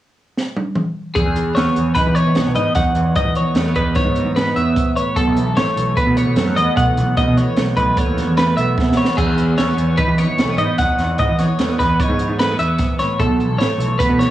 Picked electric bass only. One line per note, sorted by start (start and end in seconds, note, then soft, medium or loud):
1.15 1.24 E2 medium
1.26 1.52 E2 medium
1.56 1.65 D#2 medium
1.77 1.94 E2 medium
2.07 2.24 E3 medium
2.27 2.35 E3 medium
2.36 2.45 B1 medium
2.47 2.55 B1 medium
2.56 2.65 G#2 medium
2.76 2.84 E2 medium
2.95 3.13 E2 medium
3.16 3.25 G#2 medium
3.25 3.43 E3 medium
3.54 3.73 E2 medium
3.76 3.93 E2 medium
4.05 4.23 G#2 medium
4.25 4.51 G#2 medium
4.56 4.74 E2 medium
5.16 5.25 B1 medium
5.27 5.53 B1 medium
5.56 5.65 A1 medium
5.77 5.94 B1 medium
6.07 6.24 B2 medium
6.27 6.36 B2 medium
6.36 6.45 F#2 medium
6.47 6.56 F#2 medium
6.58 6.66 E2 medium
6.77 6.86 B1 medium
6.98 7.15 B1 medium
7.17 7.26 D#2 medium
7.28 7.45 B2 medium
7.58 7.75 B1 medium
7.77 7.95 B1 medium
8.07 8.25 D#2 medium
8.27 8.53 E2 medium
8.57 8.75 B1 medium
9.18 9.25 E2 medium
9.26 9.53 E2 medium
9.57 9.66 D#2 medium
9.77 9.95 E2 medium
10.08 10.25 E3 medium
10.28 10.37 E3 medium
10.38 10.47 B1 medium
10.47 10.57 B1 medium
10.57 10.66 G#2 medium
10.79 10.88 E2 medium
10.99 11.16 E2 medium
11.19 11.27 G#2 medium
11.29 11.46 E3 medium
11.58 11.76 E2 medium
11.80 11.97 E2 medium
12.09 12.26 G#2 medium
12.28 12.55 G#2 medium
12.59 12.77 E2 medium
13.20 13.28 B1 medium
13.28 13.55 B1 medium
13.58 13.67 A1 medium
13.78 13.96 B1 medium
14.09 14.27 B2 medium